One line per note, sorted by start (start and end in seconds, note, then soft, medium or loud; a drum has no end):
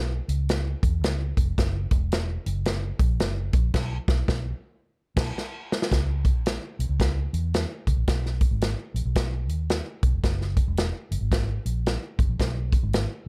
0.00 0.19 B1 medium
0.28 0.74 C#2 medium
0.28 closed hi-hat medium
0.49 snare loud
0.49 closed hi-hat medium
0.83 1.03 E2 medium
0.83 kick medium
0.83 closed hi-hat medium
1.03 1.31 C#2 medium
1.03 snare loud
1.03 closed hi-hat medium
1.37 1.54 F1 medium
1.37 kick medium
1.37 closed hi-hat medium
1.58 1.86 F#1 loud
1.58 kick medium
1.58 snare loud
1.58 closed hi-hat medium
1.91 2.36 E1 loud
1.91 kick medium
1.91 closed hi-hat medium
2.12 snare loud
2.12 closed hi-hat medium
2.46 2.91 F#1 medium
2.46 closed hi-hat medium
2.65 snare loud
2.65 closed hi-hat medium
2.99 3.16 A#1 medium
2.99 kick loud
2.99 closed hi-hat medium
3.20 snare loud
3.20 closed hi-hat medium
3.53 3.70 A#1 medium
3.53 kick loud
3.53 closed hi-hat medium
3.74 3.97 B1 loud
3.74 kick loud
3.74 snare medium
3.74 crash medium
4.08 4.22 B1 loud
4.08 kick loud
4.08 snare loud
4.28 4.51 B1 medium
4.28 kick loud
4.28 snare loud
5.16 5.30 B1 loud
5.16 kick loud
5.16 snare loud
5.16 crash medium
5.38 snare medium
5.72 snare medium
5.82 snare medium
5.91 6.34 C#2 medium
5.91 kick medium
5.91 snare loud
5.91 closed hi-hat medium
6.25 kick medium
6.25 closed hi-hat medium
6.34 6.57 A#1 medium
6.46 snare loud
6.46 closed hi-hat medium
6.79 6.88 B1 medium
6.79 closed hi-hat medium
6.89 7.26 C#2 medium
7.00 kick medium
7.00 snare loud
7.00 closed hi-hat medium
7.33 7.64 E2 medium
7.33 closed hi-hat medium
7.54 snare loud
7.54 closed hi-hat medium
7.87 7.95 C#2 medium
7.87 kick medium
7.87 closed hi-hat medium
7.97 8.05 A#1 medium
8.07 8.44 B1 loud
8.07 kick medium
8.07 snare loud
8.07 closed hi-hat medium
8.26 snare soft
8.41 kick medium
8.41 closed hi-hat medium
8.51 8.74 G#1 medium
8.61 snare loud
8.61 closed hi-hat medium
8.94 9.03 A#1 medium
8.94 closed hi-hat medium
9.05 9.49 B1 medium
9.15 kick medium
9.15 snare loud
9.15 closed hi-hat medium
9.49 9.80 D#2 medium
9.49 closed hi-hat medium
9.70 snare loud
9.70 closed hi-hat medium
10.03 10.11 B1 medium
10.03 kick loud
10.03 closed hi-hat medium
10.13 10.22 F1 medium
10.23 10.60 F#1 loud
10.23 kick medium
10.23 snare medium
10.23 closed hi-hat medium
10.41 snare soft
10.57 kick medium
10.57 closed hi-hat medium
10.68 10.90 E1 medium
10.77 snare loud
10.77 closed hi-hat medium
11.11 11.20 F#1 medium
11.11 closed hi-hat medium
11.21 11.57 G#1 medium
11.32 kick medium
11.32 snare loud
11.32 closed hi-hat medium
11.65 11.96 A#1 medium
11.65 closed hi-hat medium
11.86 snare loud
11.86 closed hi-hat medium
12.19 12.27 F#1 medium
12.19 kick loud
12.19 closed hi-hat medium
12.29 12.37 A#1 medium
12.39 12.75 B1 loud
12.39 kick medium
12.39 snare loud
12.39 closed hi-hat medium
12.72 kick medium
12.72 closed hi-hat medium
12.83 13.05 G#1 medium
12.93 snare loud
12.93 closed hi-hat medium